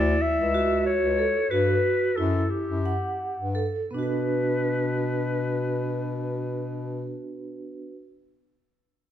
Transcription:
Already playing: bass clarinet D2, vibraphone E4, clarinet D5
0.22 clarinet E5
0.38 bass clarinet C#2
0.54 vibraphone F#4
0.86 clarinet C#5
1.02 bass clarinet C#2
1.19 vibraphone A4
1.51 bass clarinet G2, vibraphone F#4, clarinet B4
2.16 bass clarinet F#2, vibraphone E4, clarinet A4
2.50 clarinet G4
2.68 bass clarinet F#2
2.86 vibraphone F#5
3.37 bass clarinet G2
3.55 vibraphone A4
3.90 bass clarinet B2, vibraphone B3, clarinet B4
3.94 vibraphone D4
3.99 vibraphone F#4
4.03 vibraphone B4

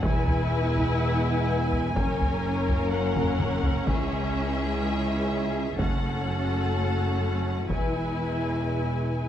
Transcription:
0.03 double bass section E1, cello section E2, french horn section G#3 B3, viola section E4, violin section B4 G#5, taiko
0.27 taiko low
0.76 taiko low
1.73 taiko low
1.96 double bass section F#1, cello section F#2, french horn section A#3 C#4, viola section C#4, violin section A#4, taiko
2.21 taiko low
2.69 taiko low
2.92 violin section F#5
3.16 taiko low-mid
3.40 taiko low-mid
3.64 taiko low
3.87 cello section C#2, double bass section C#2, timpani C#3, french horn section G#3 E4, violin section G#4 E5, taiko
5.78 double bass section F#1, cello section F#2, french horn section A3 F#4, viola section C#4, violin section A4 F#5, taiko
7.69 double bass section E1, cello section E2, french horn section G#3 E4, viola section E4, violin section B4 G#5, taiko

